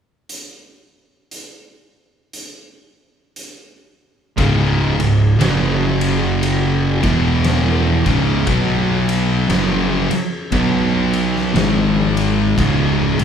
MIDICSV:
0, 0, Header, 1, 7, 480
1, 0, Start_track
1, 0, Key_signature, 4, "minor"
1, 0, Tempo, 1023891
1, 133, Time_signature, 4, 2, 24, 8
1, 6208, End_track
2, 0, Start_track
2, 0, Title_t, "Distorted electric guitar"
2, 0, Program_c, 0, 30
2, 2049, Note_on_c, 0, 37, 100
2, 2050, Note_on_c, 0, 44, 108
2, 2053, Note_on_c, 0, 49, 117
2, 2328, Note_off_c, 0, 37, 0
2, 2329, Note_off_c, 0, 44, 0
2, 2330, Note_off_c, 0, 49, 0
2, 2337, Note_on_c, 0, 37, 66
2, 2339, Note_on_c, 0, 44, 83
2, 2492, Note_off_c, 0, 37, 0
2, 2493, Note_off_c, 0, 44, 0
2, 2525, Note_on_c, 0, 42, 102
2, 2527, Note_on_c, 0, 49, 97
2, 2530, Note_on_c, 0, 54, 106
2, 3287, Note_off_c, 0, 42, 0
2, 3288, Note_off_c, 0, 49, 0
2, 3289, Note_off_c, 0, 54, 0
2, 3291, Note_on_c, 0, 40, 94
2, 3294, Note_on_c, 0, 47, 109
2, 3295, Note_on_c, 0, 52, 106
2, 3767, Note_off_c, 0, 40, 0
2, 3768, Note_off_c, 0, 47, 0
2, 3769, Note_off_c, 0, 52, 0
2, 3774, Note_on_c, 0, 37, 90
2, 3777, Note_on_c, 0, 44, 87
2, 3779, Note_on_c, 0, 49, 101
2, 3964, Note_off_c, 0, 37, 0
2, 3966, Note_off_c, 0, 44, 0
2, 3967, Note_off_c, 0, 49, 0
2, 3969, Note_on_c, 0, 47, 118
2, 3972, Note_on_c, 0, 54, 113
2, 3976, Note_on_c, 0, 59, 109
2, 4443, Note_off_c, 0, 47, 0
2, 4445, Note_off_c, 0, 54, 0
2, 4445, Note_on_c, 0, 42, 104
2, 4447, Note_on_c, 0, 49, 97
2, 4449, Note_off_c, 0, 59, 0
2, 4451, Note_on_c, 0, 54, 104
2, 4728, Note_off_c, 0, 42, 0
2, 4729, Note_off_c, 0, 49, 0
2, 4731, Note_off_c, 0, 54, 0
2, 4929, Note_on_c, 0, 47, 84
2, 4931, Note_on_c, 0, 54, 90
2, 4933, Note_on_c, 0, 59, 106
2, 5407, Note_off_c, 0, 47, 0
2, 5407, Note_off_c, 0, 54, 0
2, 5409, Note_off_c, 0, 59, 0
2, 5411, Note_on_c, 0, 44, 91
2, 5413, Note_on_c, 0, 51, 110
2, 5415, Note_on_c, 0, 56, 115
2, 5888, Note_off_c, 0, 44, 0
2, 5889, Note_off_c, 0, 51, 0
2, 5890, Note_off_c, 0, 56, 0
2, 5891, Note_on_c, 0, 37, 106
2, 5895, Note_on_c, 0, 44, 121
2, 5897, Note_on_c, 0, 49, 120
2, 6172, Note_off_c, 0, 37, 0
2, 6174, Note_off_c, 0, 44, 0
2, 6175, Note_off_c, 0, 49, 0
2, 6183, Note_on_c, 0, 37, 75
2, 6183, Note_on_c, 0, 44, 78
2, 6208, Note_off_c, 0, 37, 0
2, 6208, Note_off_c, 0, 44, 0
2, 6208, End_track
3, 0, Start_track
3, 0, Title_t, "Fingered electric bass"
3, 0, Program_c, 1, 33
3, 2052, Note_on_c, 1, 25, 93
3, 2320, Note_off_c, 1, 25, 0
3, 2335, Note_on_c, 1, 25, 88
3, 2516, Note_off_c, 1, 25, 0
3, 2526, Note_on_c, 1, 30, 94
3, 3277, Note_off_c, 1, 30, 0
3, 3298, Note_on_c, 1, 28, 97
3, 3760, Note_off_c, 1, 28, 0
3, 3780, Note_on_c, 1, 25, 95
3, 3959, Note_off_c, 1, 25, 0
3, 3972, Note_on_c, 1, 35, 99
3, 4434, Note_off_c, 1, 35, 0
3, 4452, Note_on_c, 1, 30, 101
3, 4721, Note_off_c, 1, 30, 0
3, 4933, Note_on_c, 1, 35, 97
3, 5396, Note_off_c, 1, 35, 0
3, 5413, Note_on_c, 1, 32, 89
3, 5876, Note_off_c, 1, 32, 0
3, 5896, Note_on_c, 1, 25, 105
3, 6165, Note_off_c, 1, 25, 0
3, 6186, Note_on_c, 1, 25, 90
3, 6208, Note_off_c, 1, 25, 0
3, 6208, End_track
4, 0, Start_track
4, 0, Title_t, "Muted distorted electric guitar strokes"
4, 4736, Note_on_c, 9, 29, 64
4, 4783, Note_off_c, 9, 29, 0
4, 6208, End_track
5, 0, Start_track
5, 0, Title_t, "Muted fingered electric bass strokes"
5, 4741, Note_on_c, 9, 29, 42
5, 4788, Note_off_c, 9, 29, 0
5, 6208, End_track
6, 0, Start_track
6, 0, Title_t, "Muted overdriven electric guitar strokes"
6, 4743, Note_on_c, 9, 29, 61
6, 4790, Note_off_c, 9, 29, 0
6, 6208, End_track
7, 0, Start_track
7, 0, Title_t, "Drums"
7, 138, Note_on_c, 9, 42, 60
7, 184, Note_off_c, 9, 42, 0
7, 616, Note_on_c, 9, 42, 65
7, 663, Note_off_c, 9, 42, 0
7, 1094, Note_on_c, 9, 42, 65
7, 1141, Note_off_c, 9, 42, 0
7, 1576, Note_on_c, 9, 42, 57
7, 1623, Note_off_c, 9, 42, 0
7, 2053, Note_on_c, 9, 36, 113
7, 2053, Note_on_c, 9, 51, 110
7, 2100, Note_off_c, 9, 36, 0
7, 2100, Note_off_c, 9, 51, 0
7, 2343, Note_on_c, 9, 51, 73
7, 2390, Note_off_c, 9, 51, 0
7, 2534, Note_on_c, 9, 51, 110
7, 2540, Note_on_c, 9, 38, 118
7, 2581, Note_off_c, 9, 51, 0
7, 2586, Note_off_c, 9, 38, 0
7, 2818, Note_on_c, 9, 51, 85
7, 2865, Note_off_c, 9, 51, 0
7, 3013, Note_on_c, 9, 51, 112
7, 3060, Note_off_c, 9, 51, 0
7, 3297, Note_on_c, 9, 51, 78
7, 3299, Note_on_c, 9, 36, 112
7, 3344, Note_off_c, 9, 51, 0
7, 3345, Note_off_c, 9, 36, 0
7, 3489, Note_on_c, 9, 51, 96
7, 3494, Note_on_c, 9, 38, 101
7, 3536, Note_off_c, 9, 51, 0
7, 3541, Note_off_c, 9, 38, 0
7, 3778, Note_on_c, 9, 51, 76
7, 3779, Note_on_c, 9, 36, 111
7, 3825, Note_off_c, 9, 51, 0
7, 3826, Note_off_c, 9, 36, 0
7, 3970, Note_on_c, 9, 51, 107
7, 3972, Note_on_c, 9, 36, 110
7, 4017, Note_off_c, 9, 51, 0
7, 4019, Note_off_c, 9, 36, 0
7, 4260, Note_on_c, 9, 51, 80
7, 4307, Note_off_c, 9, 51, 0
7, 4452, Note_on_c, 9, 51, 104
7, 4457, Note_on_c, 9, 38, 116
7, 4499, Note_off_c, 9, 51, 0
7, 4504, Note_off_c, 9, 38, 0
7, 4739, Note_on_c, 9, 51, 76
7, 4785, Note_off_c, 9, 51, 0
7, 4931, Note_on_c, 9, 51, 100
7, 4934, Note_on_c, 9, 36, 118
7, 4978, Note_off_c, 9, 51, 0
7, 4980, Note_off_c, 9, 36, 0
7, 5220, Note_on_c, 9, 51, 69
7, 5267, Note_off_c, 9, 51, 0
7, 5325, Note_on_c, 9, 38, 33
7, 5372, Note_off_c, 9, 38, 0
7, 5418, Note_on_c, 9, 51, 85
7, 5423, Note_on_c, 9, 38, 113
7, 5464, Note_off_c, 9, 51, 0
7, 5470, Note_off_c, 9, 38, 0
7, 5705, Note_on_c, 9, 51, 78
7, 5752, Note_off_c, 9, 51, 0
7, 5896, Note_on_c, 9, 36, 108
7, 5899, Note_on_c, 9, 51, 105
7, 5943, Note_off_c, 9, 36, 0
7, 5946, Note_off_c, 9, 51, 0
7, 6185, Note_on_c, 9, 51, 75
7, 6208, Note_off_c, 9, 51, 0
7, 6208, End_track
0, 0, End_of_file